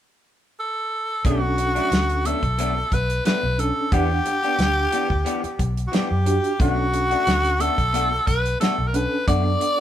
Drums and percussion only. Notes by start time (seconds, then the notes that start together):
1.25 kick, closed hi-hat
1.58 closed hi-hat
1.76 closed hi-hat
1.92 snare, closed hi-hat
2.10 closed hi-hat
2.25 closed hi-hat
2.43 kick, closed hi-hat
2.59 closed hi-hat
2.92 kick, closed hi-hat
3.10 closed hi-hat
3.25 snare, closed hi-hat
3.59 closed hi-hat
3.92 kick, closed hi-hat
4.26 closed hi-hat
4.43 closed hi-hat
4.59 snare, closed hi-hat
4.92 closed hi-hat
5.10 kick
5.26 closed hi-hat
5.44 closed hi-hat
5.59 kick, closed hi-hat
5.77 closed hi-hat
5.93 snare, closed hi-hat
6.26 closed hi-hat
6.44 closed hi-hat
6.60 kick, closed hi-hat
6.94 closed hi-hat
7.11 closed hi-hat
7.27 snare, closed hi-hat
7.45 closed hi-hat
7.60 closed hi-hat
7.78 kick, closed hi-hat
7.94 closed hi-hat
8.27 kick, closed hi-hat
8.45 closed hi-hat
8.61 snare, closed hi-hat
8.94 closed hi-hat
9.28 kick, closed hi-hat
9.61 closed hi-hat